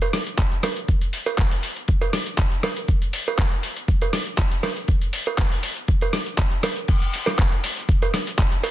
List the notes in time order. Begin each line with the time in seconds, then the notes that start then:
0.02 closed hi-hat, cowbell
0.13 cross-stick, open hi-hat
0.27 closed hi-hat
0.38 kick, clap, closed hi-hat
0.52 closed hi-hat
0.63 cross-stick, open hi-hat, cowbell
0.77 closed hi-hat
0.88 kick, closed hi-hat
1.01 closed hi-hat
1.13 open hi-hat
1.26 closed hi-hat, cowbell
1.38 kick, clap, closed hi-hat
1.51 open hi-hat
1.63 open hi-hat
1.76 closed hi-hat
1.88 kick, closed hi-hat
2.01 closed hi-hat, cowbell
2.13 cross-stick, open hi-hat
2.26 closed hi-hat
2.38 kick, clap, closed hi-hat
2.52 closed hi-hat
2.63 cross-stick, open hi-hat, cowbell
2.77 closed hi-hat
2.88 kick, closed hi-hat
3.02 closed hi-hat
3.13 open hi-hat
3.27 closed hi-hat, cowbell
3.38 kick, clap, closed hi-hat
3.52 closed hi-hat
3.63 open hi-hat
3.77 closed hi-hat
3.88 kick, closed hi-hat
4.02 closed hi-hat, cowbell
4.13 cross-stick, open hi-hat
4.27 closed hi-hat
4.38 kick, clap, closed hi-hat
4.52 closed hi-hat
4.63 cross-stick, open hi-hat, cowbell
4.77 closed hi-hat
4.88 kick, closed hi-hat
5.02 closed hi-hat
5.13 open hi-hat
5.26 closed hi-hat, cowbell
5.38 kick, clap, closed hi-hat
5.51 open hi-hat
5.63 open hi-hat
5.77 closed hi-hat
5.88 kick, closed hi-hat
6.01 closed hi-hat, cowbell
6.13 cross-stick, open hi-hat
6.26 closed hi-hat
6.38 kick, clap, closed hi-hat
6.52 closed hi-hat
6.63 cross-stick, open hi-hat, cowbell
6.76 closed hi-hat
6.88 kick, closed hi-hat, crash, cabasa
7.02 closed hi-hat
7.13 open hi-hat, cabasa
7.26 cross-stick, cowbell, cabasa
7.39 kick, clap, closed hi-hat, cabasa
7.52 closed hi-hat
7.64 open hi-hat, cabasa
7.77 closed hi-hat, cabasa
7.89 kick, closed hi-hat, cabasa
8.02 closed hi-hat, cowbell
8.14 cross-stick, open hi-hat, cabasa
8.27 closed hi-hat, cabasa
8.39 kick, clap, closed hi-hat, cabasa
8.52 closed hi-hat
8.63 open hi-hat, cowbell, cabasa